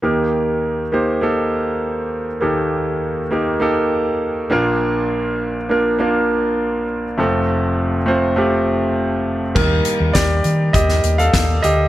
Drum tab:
CC |----------------|----------------|----------------|----------------|
HH |----------------|----------------|----------------|----------------|
CP |----------------|----------------|----------------|----------------|
SD |----------------|----------------|----------------|----------------|
BD |----------------|----------------|----------------|----------------|

CC |x---------------|
HH |--x-x-x-x-xxx-x-|
CP |----x-------x---|
SD |----o----o--o---|
BD |o---o---o---o---|